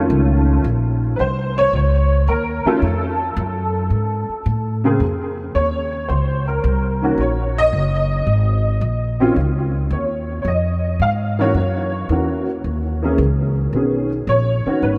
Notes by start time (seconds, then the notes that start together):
Already playing: D#3 A3 C#4 F4
0.10 C#2
0.64 A#1
1.16 C2 B4
1.20 C5
1.58 C#5
1.73 C#2 C#5
2.27 D#2 A#4
2.65 D#3 A3 C#4 F4 A4, muted upright bass stroke
2.82 F2
3.37 F#2
3.90 G#2
4.29 muted upright bass stroke
4.46 A2
4.84 C#3 A#3 C4 G#4
5.00 F2
5.55 D#2 C#5
6.09 C#2 C5
6.48 A#4
6.64 C2
7.01 D#3 A#3 C#4 F#4
7.18 A#1 C#5
7.58 D#5
7.73 F#1
8.27 G#1
8.81 A#1
9.20 D#3 C4 C#4 F4
9.36 C#2
9.91 D#2 C#5
10.42 F2 C#5
10.48 D#5
11.00 G#2 F5
11.39 E3 A#3 C#4 F#4 C#5
11.54 F#2
12.09 E2 E3 A#3 C#4 F#4
12.64 D#2
13.02 E3 A#3 C#4 G#4
13.18 C#2
13.73 B1 D#3 B3 C#4 G#4
14.27 A#1 C#5
14.66 D#3 B3 C#4 F#4, muted upright bass stroke
14.82 G#1 B4